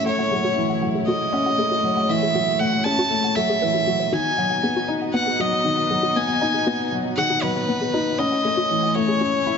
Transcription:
Already playing: felt piano E3 F#3 A3 C#4, string section A3 E4 C#5
0.05 string section G#3, felt piano A3, violin C#5, synth arpeggio sound F#5
0.19 synth arpeggio sound F#5
0.31 felt piano F#3, synth arpeggio sound G#4
0.44 synth arpeggio sound F#4
0.56 felt piano E3
0.70 synth arpeggio sound F#5
0.82 felt piano F#3, synth arpeggio sound F#5
0.95 synth arpeggio sound G#4
1.07 felt piano A3, synth arpeggio sound F#4, violin D#5
1.33 felt piano C#4, synth arpeggio sound F#5
1.46 synth arpeggio sound F#5
1.58 felt piano A3, synth arpeggio sound G#4
1.71 synth arpeggio sound F#4
1.83 felt piano F#3
1.97 synth arpeggio sound F#5
2.09 felt piano E3, violin E5, synth arpeggio sound F#5
2.23 synth arpeggio sound G#4
2.34 felt piano F#3, synth arpeggio sound F#4
2.59 felt piano A3, violin F#5, synth arpeggio sound F#5
2.73 synth arpeggio sound F#5
2.84 felt piano C#4, synth arpeggio sound G#4, violin A5
2.99 synth arpeggio sound F#4
3.10 felt piano A3
3.24 synth arpeggio sound F#5
3.35 felt piano F#3, synth arpeggio sound A4, violin E5
3.49 synth arpeggio sound G#4
3.61 felt piano E3, synth arpeggio sound B4
3.74 synth arpeggio sound F#4
3.87 felt piano F#3, synth arpeggio sound F#4
4.00 synth arpeggio sound C#5
4.12 felt piano D#3, string section B3 D#4 F#4 D#5, synth arpeggio sound F#4, violin G#5
4.38 felt piano F#3, synth arpeggio sound F#5
4.50 synth arpeggio sound F#5
4.63 felt piano B3, synth arpeggio sound G#4
4.76 synth arpeggio sound F#4
4.88 felt piano D#4
5.02 synth arpeggio sound F#5
5.14 felt piano B3, violin F#5, synth arpeggio sound F#5
5.27 synth arpeggio sound G#4
5.39 felt piano F#3, synth arpeggio sound F#4, violin D#5
5.64 felt piano D#3, synth arpeggio sound F#5
5.78 synth arpeggio sound F#5
5.90 felt piano F#3, synth arpeggio sound G#4
6.03 synth arpeggio sound F#4
6.16 felt piano B3, violin G#5
6.29 synth arpeggio sound F#5
6.41 felt piano D#4, synth arpeggio sound F#5
6.54 synth arpeggio sound G#4
6.66 felt piano B3, synth arpeggio sound F#4
6.92 felt piano F#3, synth arpeggio sound F#5
7.05 synth arpeggio sound F#5
7.17 felt piano D#3, synth arpeggio sound G#4, violin F#5
7.30 synth arpeggio sound F#4
7.42 felt piano F#3, violin B4
7.55 synth arpeggio sound F#5
7.68 felt piano B3, synth arpeggio sound F#5
7.81 synth arpeggio sound G#4
7.94 felt piano D#4, synth arpeggio sound F#4
8.18 string section A3 C#4 E4 C#5, felt piano C#4, violin D#5, synth arpeggio sound F#5
8.32 synth arpeggio sound F#5
8.45 felt piano A3, synth arpeggio sound G#4
8.57 synth arpeggio sound F#4
8.70 felt piano E3
8.83 synth arpeggio sound F#5
8.95 felt piano A3, violin C#5, synth arpeggio sound F#5
9.08 synth arpeggio sound G#4
9.21 felt piano C#4, synth arpeggio sound F#4
9.46 felt piano E4, synth arpeggio sound F#5

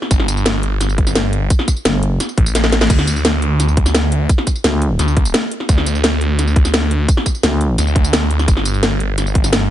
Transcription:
0.02 snare
0.11 detuned saw bass G1, kick, closed hi-hat, tambourine
0.20 snare
0.28 closed hi-hat, tambourine
0.37 tambourine
0.46 snare, closed hi-hat, tambourine
0.63 closed hi-hat
0.81 snare, closed hi-hat, tambourine
0.89 tambourine
0.98 kick, closed hi-hat
1.07 snare, tambourine
1.15 snare, closed hi-hat, tambourine
1.33 closed hi-hat
1.50 kick, closed hi-hat, tambourine
1.59 snare
1.68 kick, closed hi-hat, tambourine
1.76 tambourine
1.85 fm bass G1, snare, closed hi-hat, tambourine
2.03 closed hi-hat
2.20 snare, closed hi-hat, tambourine
2.29 tambourine
2.38 detuned saw bass A1, kick, closed hi-hat
2.46 tambourine
2.55 snare, closed hi-hat, tambourine
2.64 snare
2.72 snare, closed hi-hat
2.81 snare, tambourine
2.90 detuned saw bass D2, kick, closed hi-hat, crash, tambourine
2.99 snare
3.07 closed hi-hat, tambourine
3.16 tambourine
3.25 snare, closed hi-hat, tambourine
3.42 closed hi-hat
3.60 snare, closed hi-hat, tambourine
3.68 tambourine
3.77 kick, closed hi-hat
3.86 snare, tambourine
3.95 snare, closed hi-hat, tambourine
4.12 closed hi-hat
4.29 kick, closed hi-hat, tambourine
4.38 snare
4.47 kick, closed hi-hat, tambourine
4.56 tambourine
4.64 fm bass D2, snare, closed hi-hat, tambourine
4.82 closed hi-hat
4.99 detuned saw bass D2, snare, closed hi-hat, tambourine
5.08 tambourine
5.17 kick, closed hi-hat
5.25 tambourine
5.34 snare, closed hi-hat, tambourine
5.51 closed hi-hat
5.60 snare
5.69 detuned saw bass D2, kick, closed hi-hat, tambourine
5.78 snare
5.86 closed hi-hat, tambourine
5.95 tambourine
6.04 snare, closed hi-hat, tambourine
6.21 closed hi-hat
6.39 snare, closed hi-hat, tambourine
6.47 tambourine
6.56 kick, closed hi-hat
6.65 snare, tambourine
6.74 snare, closed hi-hat, tambourine
6.91 closed hi-hat
7.08 kick, closed hi-hat, tambourine
7.17 snare
7.26 kick, closed hi-hat, tambourine
7.35 tambourine
7.43 fm bass D2, snare, closed hi-hat, tambourine
7.61 closed hi-hat
7.78 detuned saw bass D2, snare, closed hi-hat, tambourine
7.87 tambourine
7.96 kick, closed hi-hat
8.04 tambourine
8.13 snare, closed hi-hat, tambourine
8.31 closed hi-hat
8.39 snare, tambourine
8.48 detuned saw bass G1, kick, closed hi-hat, tambourine
8.57 snare
8.65 closed hi-hat, tambourine
8.74 tambourine
8.83 snare, closed hi-hat, tambourine
9.00 closed hi-hat
9.18 snare, closed hi-hat, tambourine
9.26 tambourine
9.35 kick, closed hi-hat
9.44 snare, tambourine
9.53 snare, closed hi-hat, tambourine

